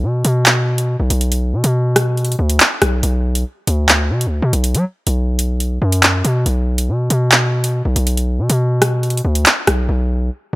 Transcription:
0.03 0.24 B2 loud
0.25 0.97 B2 loud
0.25 closed hi-hat medium
0.46 clap loud
0.46 closed hi-hat medium
0.78 closed hi-hat medium
1.00 1.10 B1 loud
1.10 1.55 B1 loud
1.10 closed hi-hat medium
1.21 closed hi-hat medium
1.32 closed hi-hat medium
1.53 1.63 B2 loud
1.64 2.36 B2 loud
1.64 closed hi-hat medium
1.96 cross-stick medium
1.96 closed hi-hat medium
2.17 closed hi-hat soft
2.25 closed hi-hat medium
2.32 closed hi-hat medium
2.39 2.59 D2 loud
2.50 closed hi-hat medium
2.60 clap loud
2.60 closed hi-hat medium
2.82 3.02 B1 loud
2.82 cross-stick loud
2.82 closed hi-hat medium
3.03 3.44 B1 loud
3.03 closed hi-hat medium
3.35 closed hi-hat medium
3.67 4.12 D2 loud
3.67 closed hi-hat medium
3.89 clap loud
3.89 closed hi-hat medium
4.10 4.28 B2 loud
4.21 closed hi-hat medium
4.26 4.42 D2 loud
4.42 4.53 B2 loud
4.53 4.76 B1 loud
4.53 closed hi-hat medium
4.64 closed hi-hat medium
4.75 4.85 F#3 loud
4.75 closed hi-hat medium
5.07 5.79 B1 loud
5.07 closed hi-hat medium
5.39 closed hi-hat medium
5.60 closed hi-hat medium
5.82 6.23 F#2 loud
5.92 closed hi-hat medium
6.03 clap loud
6.03 closed hi-hat medium
6.25 6.45 B2 loud
6.25 closed hi-hat medium
6.46 6.90 B1 loud
6.46 closed hi-hat medium
6.78 closed hi-hat medium
6.89 7.09 B2 loud
7.10 7.82 B2 loud
7.10 closed hi-hat medium
7.32 clap loud
7.32 closed hi-hat medium
7.64 closed hi-hat medium
7.85 7.96 B1 loud
7.96 8.40 B1 loud
7.96 closed hi-hat medium
8.07 closed hi-hat medium
8.17 closed hi-hat medium
8.39 8.49 B2 loud
8.50 9.22 B2 loud
8.50 closed hi-hat medium
8.82 cross-stick medium
8.82 closed hi-hat medium
9.03 closed hi-hat soft
9.10 closed hi-hat medium
9.17 closed hi-hat medium
9.25 9.45 D2 loud
9.35 closed hi-hat medium
9.46 clap loud
9.46 closed hi-hat medium
9.67 9.88 B1 loud
9.67 cross-stick loud
9.67 closed hi-hat medium
9.89 10.30 B1 loud

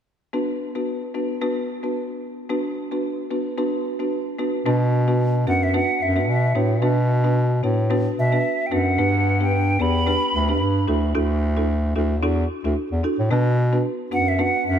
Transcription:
0.33 0.53 B3 medium
0.33 0.53 D4 medium
0.33 0.53 F#4 medium
0.33 0.53 B4 medium
0.75 1.12 B3 medium
0.75 1.12 D4 medium
0.75 1.12 F#4 medium
0.75 1.12 B4 medium
1.14 1.40 B3 medium
1.14 1.40 D4 medium
1.14 1.40 F#4 medium
1.14 1.40 B4 medium
1.41 1.61 B3 medium
1.41 1.61 D4 medium
1.41 1.61 F#4 medium
1.41 1.61 B4 loud
1.83 2.01 B3 medium
1.83 2.01 D4 medium
1.83 2.01 F#4 medium
1.83 2.01 B4 medium
2.49 2.69 B3 medium
2.49 2.69 D4 medium
2.49 2.69 F#4 medium
2.49 2.69 B4 loud
2.91 3.28 B3 medium
2.91 3.28 D4 medium
2.91 3.28 F#4 medium
2.91 3.28 B4 medium
3.31 3.56 B3 medium
3.31 3.56 D4 medium
3.31 3.56 F#4 medium
3.31 3.56 B4 medium
3.57 3.77 B3 medium
3.57 3.77 D4 medium
3.57 3.77 F#4 medium
3.57 3.77 B4 loud
3.99 4.17 B3 medium
3.99 4.17 D4 medium
3.99 4.17 F#4 medium
3.99 4.17 B4 medium
4.39 4.58 B3 medium
4.39 4.58 D4 medium
4.39 4.58 F#4 medium
4.39 4.58 B4 medium
4.66 5.43 B2 loud
4.66 4.85 B3 medium
4.66 4.85 D4 medium
4.66 4.85 F#4 medium
4.66 4.85 B4 loud
5.08 5.44 B3 medium
5.08 5.44 D4 medium
5.08 5.44 F#4 medium
5.08 5.44 B4 medium
5.47 5.82 F#2 medium
5.47 5.72 B3 medium
5.47 5.72 D4 medium
5.47 5.72 F#4 medium
5.47 5.72 B4 medium
5.47 5.65 F#5 loud
5.63 5.75 E5 loud
5.74 5.93 B3 loud
5.74 5.93 D4 medium
5.74 5.93 F#4 medium
5.74 5.94 B4 loud
5.74 6.04 F#5 loud
6.01 6.30 F#2 medium
6.01 6.29 E5 loud
6.16 6.33 B3 medium
6.16 6.34 D4 medium
6.16 6.34 F#4 medium
6.16 6.34 B4 medium
6.28 6.51 B2 loud
6.28 6.68 E5 medium
6.55 6.84 A2 loud
6.55 6.74 B3 medium
6.55 6.74 D4 medium
6.55 6.75 F#4 medium
6.55 6.75 B4 medium
6.82 7.59 B2 loud
6.82 7.01 B3 medium
6.82 7.01 D4 medium
6.82 7.01 F#4 medium
6.82 7.02 B4 loud
7.24 7.60 B3 medium
7.24 7.60 D4 medium
7.24 7.61 F#4 medium
7.24 7.61 B4 medium
7.63 8.08 A2 medium
7.63 7.88 B3 medium
7.63 7.88 D4 medium
7.63 7.89 F#4 medium
7.63 7.89 B4 medium
7.90 8.10 B3 medium
7.90 8.10 D4 medium
7.90 8.10 F#4 medium
7.90 8.10 B4 loud
8.17 8.40 B2 medium
8.17 8.68 E5 medium
8.32 8.50 B3 medium
8.32 8.50 D4 medium
8.32 8.50 F#4 medium
8.32 8.50 B4 medium
8.66 8.75 G5 medium
8.71 8.94 F#2 medium
8.71 8.91 B3 medium
8.71 8.91 D4 medium
8.71 8.91 F#4 medium
8.71 8.91 B4 medium
8.71 9.41 F#5 loud
8.98 9.76 G2 loud
8.98 9.18 B3 loud
8.98 9.18 D4 medium
8.98 9.18 G4 medium
8.98 9.18 B4 loud
9.40 9.77 B3 medium
9.40 9.77 D4 medium
9.40 9.77 G4 medium
9.40 9.77 B4 medium
9.40 9.83 G5 loud
9.79 10.14 E2 loud
9.79 10.05 B3 medium
9.79 10.05 D4 medium
9.79 10.05 G4 medium
9.79 10.05 B4 medium
9.79 10.89 B5 loud
10.06 10.26 B3 loud
10.06 10.26 D4 medium
10.06 10.26 G4 medium
10.06 10.26 B4 loud
10.34 10.62 D2 loud
10.48 10.66 B3 medium
10.48 10.66 D4 medium
10.48 10.66 G4 medium
10.48 10.66 B4 medium
10.61 10.83 G2 loud
10.88 11.10 D2 loud
10.88 11.07 D4 medium
10.88 11.07 E4 medium
10.88 11.07 F#4 medium
10.88 11.07 A4 medium
11.15 11.92 D2 loud
11.15 11.34 D4 medium
11.15 11.34 E4 medium
11.15 11.34 F#4 medium
11.15 11.34 A4 loud
11.56 11.93 D4 medium
11.56 11.93 E4 medium
11.56 11.93 F#4 medium
11.56 11.93 A4 medium
11.96 12.24 D2 loud
11.96 12.21 D4 medium
11.96 12.21 E4 medium
11.96 12.21 F#4 medium
11.96 12.21 A4 medium
12.23 12.45 E2 loud
12.23 12.42 D4 loud
12.23 12.42 E4 medium
12.23 12.42 F#4 medium
12.23 12.42 A4 loud
12.64 12.75 D2 medium
12.64 12.82 D4 medium
12.64 12.82 E4 medium
12.64 12.82 F#4 medium
12.64 12.82 A4 medium
12.92 13.02 E2 medium
13.04 13.23 D4 medium
13.04 13.23 E4 medium
13.04 13.23 F#4 medium
13.04 13.23 A4 medium
13.19 13.29 A2 loud
13.31 13.82 B2 loud
13.31 13.50 B3 medium
13.31 13.50 D4 medium
13.31 13.50 F#4 medium
13.31 13.50 B4 loud
13.72 14.09 B3 medium
13.72 14.09 D4 medium
13.72 14.09 F#4 medium
13.72 14.09 B4 medium
14.11 14.47 F#2 medium
14.11 14.37 B3 medium
14.11 14.37 D4 medium
14.11 14.37 F#4 medium
14.11 14.37 B4 medium
14.11 14.30 F#5 loud
14.28 14.42 E5 loud
14.38 14.58 B3 loud
14.38 14.58 D4 medium
14.38 14.58 F#4 medium
14.38 14.58 B4 loud
14.38 14.67 F#5 loud
14.66 14.79 F#2 loud
14.66 14.79 E5 loud

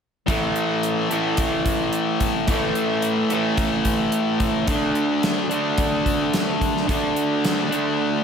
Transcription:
0.26 1.13 A2 medium
0.26 1.12 E3 medium
0.26 1.10 A3 medium
0.26 kick loud
0.26 closed hi-hat medium
0.56 closed hi-hat medium
0.83 closed hi-hat medium
1.10 2.47 A2 medium
1.10 2.48 E3 medium
1.10 2.51 A3 medium
1.10 closed hi-hat medium
1.37 kick medium
1.37 closed hi-hat medium
1.66 kick medium
1.66 closed hi-hat medium
1.93 closed hi-hat medium
2.20 kick medium
2.20 closed hi-hat medium
2.48 3.29 A2 medium
2.48 3.30 E3 medium
2.48 3.31 A3 medium
2.48 kick loud
2.48 closed hi-hat medium
2.75 closed hi-hat medium
3.02 closed hi-hat medium
3.30 4.68 E3 medium
3.30 4.69 A3 medium
3.30 closed hi-hat medium
3.34 4.67 A2 medium
3.58 kick medium
3.58 closed hi-hat medium
3.85 kick medium
3.85 closed hi-hat medium
4.12 closed hi-hat medium
4.40 kick medium
4.40 closed hi-hat soft
4.67 5.53 D3 medium
4.67 5.51 A3 medium
4.67 5.49 D4 medium
4.67 kick loud
4.67 closed hi-hat medium
4.95 closed hi-hat medium
5.23 snare loud
5.23 closed hi-hat medium
5.49 6.86 D3 medium
5.49 6.89 A3 medium
5.49 6.86 D4 medium
5.49 closed hi-hat medium
5.78 kick loud
5.78 closed hi-hat medium
6.06 kick medium
6.06 closed hi-hat medium
6.34 snare loud
6.34 closed hi-hat medium
6.61 kick medium
6.61 closed hi-hat medium
6.77 snare soft
6.87 7.69 D3 medium
6.87 7.70 A3 medium
6.87 kick loud
6.87 closed hi-hat medium
6.91 7.70 D4 medium
7.16 closed hi-hat medium
7.45 snare loud
7.45 closed hi-hat medium
7.71 8.24 D3 medium
7.71 8.24 A3 medium
7.71 8.24 D4 medium
7.71 closed hi-hat medium

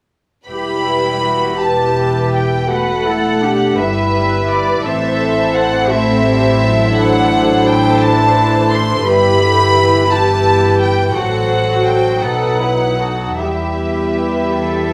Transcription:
0.48 3.75 E1 soft
0.48 1.56 G3 soft
0.48 1.56 E4 soft
0.48 0.83 G4 soft
0.48 1.56 G4 soft
0.48 1.56 B4 soft
0.48 1.56 B5 medium
0.86 1.23 E4 soft
1.23 1.59 F#4 soft
1.59 2.71 E3 soft
1.59 2.70 G4 soft
1.59 2.71 G4 soft
1.59 2.68 B4 soft
1.59 2.33 A5 medium
2.35 2.70 G5 medium
2.70 3.78 A3 soft
2.70 3.06 F#4 soft
2.70 3.78 A4 soft
2.70 3.07 B4 medium
2.70 3.78 F#5 medium
3.06 3.42 E4 soft
3.06 3.43 A4 medium
3.42 3.78 D4 soft
3.42 3.79 G4 soft
3.78 4.87 G1 soft
3.78 4.86 G3 soft
3.78 4.86 E4 soft
3.78 4.86 B4 soft
3.78 4.86 B4 medium
3.78 4.50 E5 medium
4.51 4.86 D5 medium
4.86 9.03 A1 medium
4.86 5.91 E3 medium
4.86 6.98 C4 medium
4.86 5.90 A4 medium
4.86 5.91 A4 soft
4.86 5.91 C5 soft
4.86 5.57 E5 medium
5.57 5.92 F#5 medium
5.92 6.27 A3 medium
5.92 9.08 E4 medium
5.92 9.07 A4 medium
5.92 6.95 C5 medium
5.92 6.95 E5 medium
6.26 6.61 G3 medium
6.63 8.03 F#3 medium
6.96 9.04 D4 medium
6.96 9.04 C5 medium
6.96 7.67 F#5 medium
7.66 8.02 G5 medium
8.01 9.08 E3 medium
8.01 8.71 A5 medium
8.73 9.08 C6 medium
9.07 11.12 G1 medium
9.07 9.42 G3 medium
9.07 10.10 E4 medium
9.07 10.09 G4 medium
9.07 11.12 B4 medium
9.07 10.11 B5 medium
9.43 9.77 D3 medium
9.78 10.11 E3 medium
10.11 11.14 E3 medium
10.11 11.15 E4 medium
10.11 11.16 G4 medium
10.11 10.80 A5 medium
10.81 11.15 G5 medium
11.16 12.24 A1 soft
11.16 12.23 F#3 soft
11.16 12.22 F#4 medium
11.16 12.24 F#4 soft
11.16 12.20 A4 soft
11.16 12.21 C5 soft
11.16 11.88 F#5 medium
11.87 12.23 G5 medium
12.22 13.41 B1 soft
12.22 13.39 F#3 soft
12.22 13.39 D#4 soft
12.22 12.59 A4 soft
12.22 12.61 A4 soft
12.22 12.59 B4 soft
12.22 13.41 F#5 medium
12.60 13.00 E4 soft
12.60 13.00 B4 soft
13.00 13.41 F#4 soft
13.00 13.41 A4 soft
13.39 14.93 E2 soft
13.39 14.93 G3 soft
13.39 14.93 E4 soft
13.39 14.50 G4 soft
13.39 14.93 G4 soft
13.39 14.93 B4 soft
13.39 14.93 E5 soft
14.61 14.93 A4 soft

